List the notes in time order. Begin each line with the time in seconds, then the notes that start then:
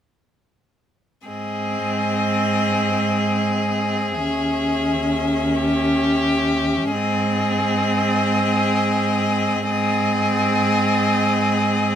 1.27 G#2 C4 G#4 D#5
4.16 D#2 C#4 E5
5.55 G4
6.91 G#2 C4 G#4 D#5
9.70 G#2 C4 G#4 D#5